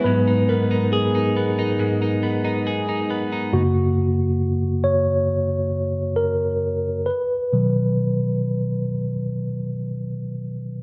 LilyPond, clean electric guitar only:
\new Staff \with { instrumentName = "Clean electric guitar" } { \time 4/4 \key b \major \tempo 4 = 68 gis,16 dis'16 b16 dis'16 gis'16 dis'16 b16 dis'16 gis,16 dis'16 b16 dis'16 gis'16 dis'16 b16 dis'16 | r1 | r1 | }